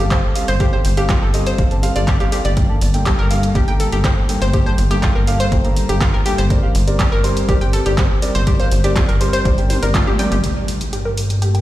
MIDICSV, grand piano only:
0, 0, Header, 1, 2, 480
1, 0, Start_track
1, 0, Key_signature, -2, "minor"
1, 0, Tempo, 491803
1, 588, Time_signature, 4, 2, 24, 8
1, 11332, End_track
2, 0, Start_track
2, 0, Title_t, "Grand piano"
2, 0, Program_c, 0, 0
2, 107, Note_on_c, 0, 55, 74
2, 108, Note_on_c, 0, 60, 67
2, 108, Note_on_c, 0, 69, 63
2, 172, Note_off_c, 0, 55, 0
2, 172, Note_off_c, 0, 60, 0
2, 172, Note_off_c, 0, 69, 0
2, 348, Note_on_c, 0, 77, 86
2, 349, Note_on_c, 0, 55, 80
2, 349, Note_on_c, 0, 60, 72
2, 349, Note_on_c, 0, 69, 70
2, 451, Note_off_c, 0, 77, 0
2, 452, Note_off_c, 0, 55, 0
2, 452, Note_off_c, 0, 60, 0
2, 452, Note_off_c, 0, 69, 0
2, 587, Note_on_c, 0, 69, 74
2, 588, Note_on_c, 0, 55, 81
2, 588, Note_on_c, 0, 60, 74
2, 588, Note_on_c, 0, 77, 89
2, 681, Note_off_c, 0, 55, 0
2, 681, Note_off_c, 0, 60, 0
2, 681, Note_off_c, 0, 69, 0
2, 681, Note_off_c, 0, 77, 0
2, 711, Note_on_c, 0, 55, 79
2, 711, Note_on_c, 0, 60, 72
2, 711, Note_on_c, 0, 69, 73
2, 712, Note_on_c, 0, 79, 89
2, 772, Note_off_c, 0, 55, 0
2, 772, Note_off_c, 0, 60, 0
2, 772, Note_off_c, 0, 69, 0
2, 772, Note_off_c, 0, 79, 0
2, 951, Note_on_c, 0, 55, 82
2, 952, Note_on_c, 0, 60, 71
2, 952, Note_on_c, 0, 69, 77
2, 952, Note_on_c, 0, 77, 88
2, 1049, Note_off_c, 0, 55, 0
2, 1049, Note_off_c, 0, 60, 0
2, 1049, Note_off_c, 0, 69, 0
2, 1049, Note_off_c, 0, 77, 0
2, 1067, Note_on_c, 0, 55, 90
2, 1067, Note_on_c, 0, 60, 81
2, 1067, Note_on_c, 0, 77, 101
2, 1068, Note_on_c, 0, 69, 82
2, 1132, Note_off_c, 0, 55, 0
2, 1132, Note_off_c, 0, 60, 0
2, 1132, Note_off_c, 0, 69, 0
2, 1132, Note_off_c, 0, 77, 0
2, 1307, Note_on_c, 0, 55, 87
2, 1307, Note_on_c, 0, 60, 84
2, 1307, Note_on_c, 0, 69, 76
2, 1307, Note_on_c, 0, 75, 101
2, 1519, Note_off_c, 0, 55, 0
2, 1519, Note_off_c, 0, 60, 0
2, 1519, Note_off_c, 0, 69, 0
2, 1519, Note_off_c, 0, 75, 0
2, 1547, Note_on_c, 0, 60, 76
2, 1547, Note_on_c, 0, 77, 89
2, 1548, Note_on_c, 0, 55, 82
2, 1548, Note_on_c, 0, 69, 75
2, 1612, Note_off_c, 0, 55, 0
2, 1612, Note_off_c, 0, 60, 0
2, 1612, Note_off_c, 0, 69, 0
2, 1612, Note_off_c, 0, 77, 0
2, 1670, Note_on_c, 0, 55, 78
2, 1670, Note_on_c, 0, 60, 69
2, 1670, Note_on_c, 0, 69, 72
2, 1670, Note_on_c, 0, 81, 85
2, 1763, Note_off_c, 0, 55, 0
2, 1764, Note_off_c, 0, 60, 0
2, 1764, Note_off_c, 0, 69, 0
2, 1764, Note_off_c, 0, 81, 0
2, 1786, Note_on_c, 0, 55, 87
2, 1786, Note_on_c, 0, 60, 81
2, 1786, Note_on_c, 0, 69, 80
2, 1786, Note_on_c, 0, 77, 103
2, 1851, Note_off_c, 0, 55, 0
2, 1851, Note_off_c, 0, 60, 0
2, 1851, Note_off_c, 0, 69, 0
2, 1851, Note_off_c, 0, 77, 0
2, 1910, Note_on_c, 0, 55, 86
2, 1910, Note_on_c, 0, 60, 79
2, 1910, Note_on_c, 0, 69, 78
2, 1910, Note_on_c, 0, 77, 96
2, 1971, Note_off_c, 0, 69, 0
2, 1972, Note_off_c, 0, 55, 0
2, 1972, Note_off_c, 0, 60, 0
2, 1972, Note_off_c, 0, 77, 0
2, 2150, Note_on_c, 0, 55, 81
2, 2150, Note_on_c, 0, 60, 77
2, 2150, Note_on_c, 0, 69, 79
2, 2150, Note_on_c, 0, 77, 94
2, 2212, Note_off_c, 0, 55, 0
2, 2212, Note_off_c, 0, 60, 0
2, 2212, Note_off_c, 0, 69, 0
2, 2212, Note_off_c, 0, 77, 0
2, 2267, Note_on_c, 0, 69, 71
2, 2268, Note_on_c, 0, 60, 76
2, 2268, Note_on_c, 0, 77, 84
2, 2332, Note_off_c, 0, 60, 0
2, 2332, Note_off_c, 0, 69, 0
2, 2332, Note_off_c, 0, 77, 0
2, 2508, Note_on_c, 0, 43, 83
2, 2508, Note_on_c, 0, 58, 74
2, 2508, Note_on_c, 0, 69, 76
2, 2508, Note_on_c, 0, 79, 88
2, 2601, Note_off_c, 0, 43, 0
2, 2601, Note_off_c, 0, 58, 0
2, 2601, Note_off_c, 0, 69, 0
2, 2601, Note_off_c, 0, 79, 0
2, 2630, Note_on_c, 0, 43, 82
2, 2630, Note_on_c, 0, 58, 74
2, 2630, Note_on_c, 0, 69, 73
2, 2630, Note_on_c, 0, 81, 82
2, 2691, Note_off_c, 0, 43, 0
2, 2691, Note_off_c, 0, 58, 0
2, 2692, Note_off_c, 0, 69, 0
2, 2692, Note_off_c, 0, 81, 0
2, 2870, Note_on_c, 0, 43, 80
2, 2870, Note_on_c, 0, 58, 75
2, 2870, Note_on_c, 0, 69, 74
2, 2870, Note_on_c, 0, 79, 85
2, 2968, Note_off_c, 0, 58, 0
2, 2968, Note_off_c, 0, 79, 0
2, 2969, Note_off_c, 0, 43, 0
2, 2969, Note_off_c, 0, 69, 0
2, 2986, Note_on_c, 0, 43, 91
2, 2986, Note_on_c, 0, 58, 80
2, 2986, Note_on_c, 0, 69, 79
2, 2986, Note_on_c, 0, 79, 96
2, 3051, Note_off_c, 0, 58, 0
2, 3052, Note_off_c, 0, 43, 0
2, 3052, Note_off_c, 0, 69, 0
2, 3052, Note_off_c, 0, 79, 0
2, 3226, Note_on_c, 0, 43, 88
2, 3226, Note_on_c, 0, 58, 77
2, 3226, Note_on_c, 0, 69, 80
2, 3226, Note_on_c, 0, 77, 96
2, 3439, Note_off_c, 0, 43, 0
2, 3439, Note_off_c, 0, 58, 0
2, 3439, Note_off_c, 0, 69, 0
2, 3439, Note_off_c, 0, 77, 0
2, 3467, Note_on_c, 0, 43, 79
2, 3467, Note_on_c, 0, 58, 74
2, 3467, Note_on_c, 0, 69, 76
2, 3467, Note_on_c, 0, 79, 89
2, 3532, Note_off_c, 0, 43, 0
2, 3532, Note_off_c, 0, 58, 0
2, 3532, Note_off_c, 0, 69, 0
2, 3532, Note_off_c, 0, 79, 0
2, 3588, Note_on_c, 0, 69, 72
2, 3589, Note_on_c, 0, 43, 77
2, 3589, Note_on_c, 0, 58, 69
2, 3589, Note_on_c, 0, 82, 82
2, 3800, Note_off_c, 0, 43, 0
2, 3800, Note_off_c, 0, 58, 0
2, 3800, Note_off_c, 0, 69, 0
2, 3800, Note_off_c, 0, 82, 0
2, 3830, Note_on_c, 0, 43, 74
2, 3830, Note_on_c, 0, 58, 68
2, 3830, Note_on_c, 0, 69, 65
2, 3830, Note_on_c, 0, 79, 82
2, 3928, Note_off_c, 0, 43, 0
2, 3928, Note_off_c, 0, 58, 0
2, 3928, Note_off_c, 0, 69, 0
2, 3928, Note_off_c, 0, 79, 0
2, 3947, Note_on_c, 0, 43, 72
2, 3947, Note_on_c, 0, 58, 65
2, 3947, Note_on_c, 0, 69, 68
2, 3947, Note_on_c, 0, 79, 83
2, 4012, Note_off_c, 0, 43, 0
2, 4012, Note_off_c, 0, 58, 0
2, 4012, Note_off_c, 0, 69, 0
2, 4012, Note_off_c, 0, 79, 0
2, 4186, Note_on_c, 0, 43, 81
2, 4187, Note_on_c, 0, 58, 78
2, 4187, Note_on_c, 0, 69, 74
2, 4187, Note_on_c, 0, 79, 86
2, 4291, Note_off_c, 0, 43, 0
2, 4291, Note_off_c, 0, 58, 0
2, 4291, Note_off_c, 0, 69, 0
2, 4291, Note_off_c, 0, 79, 0
2, 4427, Note_on_c, 0, 43, 82
2, 4427, Note_on_c, 0, 58, 76
2, 4427, Note_on_c, 0, 69, 72
2, 4427, Note_on_c, 0, 79, 91
2, 4521, Note_off_c, 0, 43, 0
2, 4521, Note_off_c, 0, 58, 0
2, 4521, Note_off_c, 0, 69, 0
2, 4521, Note_off_c, 0, 79, 0
2, 4549, Note_on_c, 0, 69, 76
2, 4550, Note_on_c, 0, 43, 80
2, 4550, Note_on_c, 0, 58, 74
2, 4550, Note_on_c, 0, 81, 91
2, 4611, Note_off_c, 0, 58, 0
2, 4611, Note_off_c, 0, 69, 0
2, 4612, Note_off_c, 0, 43, 0
2, 4612, Note_off_c, 0, 81, 0
2, 4789, Note_on_c, 0, 43, 86
2, 4789, Note_on_c, 0, 69, 73
2, 4789, Note_on_c, 0, 79, 90
2, 4790, Note_on_c, 0, 58, 75
2, 4888, Note_off_c, 0, 43, 0
2, 4888, Note_off_c, 0, 58, 0
2, 4888, Note_off_c, 0, 69, 0
2, 4888, Note_off_c, 0, 79, 0
2, 4906, Note_on_c, 0, 43, 91
2, 4906, Note_on_c, 0, 58, 85
2, 4906, Note_on_c, 0, 69, 84
2, 4906, Note_on_c, 0, 79, 99
2, 4972, Note_off_c, 0, 43, 0
2, 4972, Note_off_c, 0, 58, 0
2, 4972, Note_off_c, 0, 69, 0
2, 4972, Note_off_c, 0, 79, 0
2, 5147, Note_on_c, 0, 43, 88
2, 5147, Note_on_c, 0, 58, 81
2, 5147, Note_on_c, 0, 69, 81
2, 5147, Note_on_c, 0, 77, 99
2, 5359, Note_off_c, 0, 43, 0
2, 5359, Note_off_c, 0, 58, 0
2, 5359, Note_off_c, 0, 69, 0
2, 5359, Note_off_c, 0, 77, 0
2, 5386, Note_on_c, 0, 58, 76
2, 5386, Note_on_c, 0, 69, 74
2, 5386, Note_on_c, 0, 79, 86
2, 5387, Note_on_c, 0, 43, 82
2, 5451, Note_off_c, 0, 58, 0
2, 5452, Note_off_c, 0, 43, 0
2, 5452, Note_off_c, 0, 69, 0
2, 5452, Note_off_c, 0, 79, 0
2, 5509, Note_on_c, 0, 43, 84
2, 5509, Note_on_c, 0, 58, 71
2, 5509, Note_on_c, 0, 69, 75
2, 5509, Note_on_c, 0, 82, 87
2, 5720, Note_off_c, 0, 43, 0
2, 5720, Note_off_c, 0, 58, 0
2, 5720, Note_off_c, 0, 69, 0
2, 5720, Note_off_c, 0, 82, 0
2, 5750, Note_on_c, 0, 69, 65
2, 5750, Note_on_c, 0, 79, 80
2, 5751, Note_on_c, 0, 43, 75
2, 5751, Note_on_c, 0, 58, 71
2, 5848, Note_off_c, 0, 69, 0
2, 5848, Note_off_c, 0, 79, 0
2, 5849, Note_off_c, 0, 43, 0
2, 5849, Note_off_c, 0, 58, 0
2, 5867, Note_on_c, 0, 43, 68
2, 5867, Note_on_c, 0, 58, 68
2, 5867, Note_on_c, 0, 69, 65
2, 5867, Note_on_c, 0, 79, 81
2, 5932, Note_off_c, 0, 43, 0
2, 5932, Note_off_c, 0, 58, 0
2, 5932, Note_off_c, 0, 69, 0
2, 5932, Note_off_c, 0, 79, 0
2, 6106, Note_on_c, 0, 58, 72
2, 6106, Note_on_c, 0, 69, 74
2, 6107, Note_on_c, 0, 43, 80
2, 6107, Note_on_c, 0, 79, 91
2, 6211, Note_off_c, 0, 43, 0
2, 6211, Note_off_c, 0, 58, 0
2, 6211, Note_off_c, 0, 69, 0
2, 6211, Note_off_c, 0, 79, 0
2, 6346, Note_on_c, 0, 55, 82
2, 6346, Note_on_c, 0, 60, 79
2, 6346, Note_on_c, 0, 70, 80
2, 6346, Note_on_c, 0, 74, 90
2, 6440, Note_off_c, 0, 60, 0
2, 6440, Note_off_c, 0, 70, 0
2, 6441, Note_off_c, 0, 55, 0
2, 6441, Note_off_c, 0, 74, 0
2, 6469, Note_on_c, 0, 55, 85
2, 6469, Note_on_c, 0, 60, 72
2, 6469, Note_on_c, 0, 70, 73
2, 6469, Note_on_c, 0, 77, 88
2, 6531, Note_off_c, 0, 55, 0
2, 6531, Note_off_c, 0, 60, 0
2, 6531, Note_off_c, 0, 70, 0
2, 6531, Note_off_c, 0, 77, 0
2, 6709, Note_on_c, 0, 55, 82
2, 6709, Note_on_c, 0, 70, 77
2, 6709, Note_on_c, 0, 74, 88
2, 6710, Note_on_c, 0, 60, 72
2, 6808, Note_off_c, 0, 55, 0
2, 6808, Note_off_c, 0, 60, 0
2, 6808, Note_off_c, 0, 70, 0
2, 6808, Note_off_c, 0, 74, 0
2, 6826, Note_on_c, 0, 55, 94
2, 6826, Note_on_c, 0, 60, 85
2, 6826, Note_on_c, 0, 70, 81
2, 6826, Note_on_c, 0, 74, 106
2, 6891, Note_off_c, 0, 70, 0
2, 6891, Note_off_c, 0, 74, 0
2, 6892, Note_off_c, 0, 55, 0
2, 6892, Note_off_c, 0, 60, 0
2, 7066, Note_on_c, 0, 55, 92
2, 7066, Note_on_c, 0, 60, 83
2, 7066, Note_on_c, 0, 70, 86
2, 7066, Note_on_c, 0, 72, 96
2, 7278, Note_off_c, 0, 55, 0
2, 7278, Note_off_c, 0, 70, 0
2, 7279, Note_off_c, 0, 60, 0
2, 7279, Note_off_c, 0, 72, 0
2, 7306, Note_on_c, 0, 55, 86
2, 7306, Note_on_c, 0, 60, 76
2, 7306, Note_on_c, 0, 70, 76
2, 7306, Note_on_c, 0, 74, 89
2, 7371, Note_off_c, 0, 60, 0
2, 7371, Note_off_c, 0, 70, 0
2, 7372, Note_off_c, 0, 55, 0
2, 7372, Note_off_c, 0, 74, 0
2, 7428, Note_on_c, 0, 55, 81
2, 7429, Note_on_c, 0, 60, 73
2, 7429, Note_on_c, 0, 70, 75
2, 7429, Note_on_c, 0, 79, 87
2, 7640, Note_off_c, 0, 55, 0
2, 7640, Note_off_c, 0, 60, 0
2, 7640, Note_off_c, 0, 70, 0
2, 7640, Note_off_c, 0, 79, 0
2, 7670, Note_on_c, 0, 55, 75
2, 7670, Note_on_c, 0, 60, 71
2, 7670, Note_on_c, 0, 70, 67
2, 7670, Note_on_c, 0, 74, 85
2, 7768, Note_off_c, 0, 55, 0
2, 7768, Note_off_c, 0, 60, 0
2, 7768, Note_off_c, 0, 70, 0
2, 7768, Note_off_c, 0, 74, 0
2, 7786, Note_on_c, 0, 55, 72
2, 7786, Note_on_c, 0, 60, 65
2, 7851, Note_off_c, 0, 60, 0
2, 7852, Note_off_c, 0, 55, 0
2, 8026, Note_on_c, 0, 70, 77
2, 8027, Note_on_c, 0, 55, 83
2, 8027, Note_on_c, 0, 60, 78
2, 8027, Note_on_c, 0, 74, 92
2, 8130, Note_off_c, 0, 70, 0
2, 8131, Note_off_c, 0, 55, 0
2, 8131, Note_off_c, 0, 60, 0
2, 8131, Note_off_c, 0, 74, 0
2, 8266, Note_on_c, 0, 55, 86
2, 8266, Note_on_c, 0, 70, 74
2, 8266, Note_on_c, 0, 74, 94
2, 8267, Note_on_c, 0, 60, 75
2, 8360, Note_off_c, 0, 55, 0
2, 8360, Note_off_c, 0, 70, 0
2, 8360, Note_off_c, 0, 74, 0
2, 8361, Note_off_c, 0, 60, 0
2, 8390, Note_on_c, 0, 55, 82
2, 8390, Note_on_c, 0, 60, 75
2, 8390, Note_on_c, 0, 70, 76
2, 8390, Note_on_c, 0, 77, 92
2, 8451, Note_off_c, 0, 55, 0
2, 8451, Note_off_c, 0, 60, 0
2, 8451, Note_off_c, 0, 70, 0
2, 8452, Note_off_c, 0, 77, 0
2, 8629, Note_on_c, 0, 74, 89
2, 8630, Note_on_c, 0, 55, 82
2, 8630, Note_on_c, 0, 60, 74
2, 8630, Note_on_c, 0, 70, 73
2, 8728, Note_off_c, 0, 55, 0
2, 8728, Note_off_c, 0, 60, 0
2, 8728, Note_off_c, 0, 70, 0
2, 8728, Note_off_c, 0, 74, 0
2, 8746, Note_on_c, 0, 55, 91
2, 8746, Note_on_c, 0, 60, 84
2, 8811, Note_off_c, 0, 55, 0
2, 8811, Note_off_c, 0, 60, 0
2, 8985, Note_on_c, 0, 55, 93
2, 8985, Note_on_c, 0, 60, 87
2, 8985, Note_on_c, 0, 70, 81
2, 8985, Note_on_c, 0, 72, 102
2, 9198, Note_off_c, 0, 55, 0
2, 9198, Note_off_c, 0, 60, 0
2, 9198, Note_off_c, 0, 70, 0
2, 9198, Note_off_c, 0, 72, 0
2, 9225, Note_on_c, 0, 60, 78
2, 9225, Note_on_c, 0, 70, 77
2, 9226, Note_on_c, 0, 55, 85
2, 9226, Note_on_c, 0, 74, 93
2, 9291, Note_off_c, 0, 55, 0
2, 9291, Note_off_c, 0, 60, 0
2, 9291, Note_off_c, 0, 70, 0
2, 9291, Note_off_c, 0, 74, 0
2, 9348, Note_on_c, 0, 55, 79
2, 9348, Note_on_c, 0, 60, 77
2, 9348, Note_on_c, 0, 70, 73
2, 9348, Note_on_c, 0, 79, 88
2, 9560, Note_off_c, 0, 55, 0
2, 9560, Note_off_c, 0, 60, 0
2, 9560, Note_off_c, 0, 70, 0
2, 9560, Note_off_c, 0, 79, 0
2, 9589, Note_on_c, 0, 55, 77
2, 9589, Note_on_c, 0, 60, 69
2, 9589, Note_on_c, 0, 70, 68
2, 9589, Note_on_c, 0, 74, 84
2, 9688, Note_off_c, 0, 55, 0
2, 9688, Note_off_c, 0, 60, 0
2, 9688, Note_off_c, 0, 70, 0
2, 9688, Note_off_c, 0, 74, 0
2, 9706, Note_on_c, 0, 55, 74
2, 9706, Note_on_c, 0, 60, 70
2, 9706, Note_on_c, 0, 70, 71
2, 9771, Note_off_c, 0, 55, 0
2, 9771, Note_off_c, 0, 60, 0
2, 9771, Note_off_c, 0, 70, 0
2, 9945, Note_on_c, 0, 70, 78
2, 9946, Note_on_c, 0, 60, 85
2, 9946, Note_on_c, 0, 74, 96
2, 10050, Note_off_c, 0, 60, 0
2, 10050, Note_off_c, 0, 70, 0
2, 10050, Note_off_c, 0, 74, 0
2, 11332, End_track
0, 0, End_of_file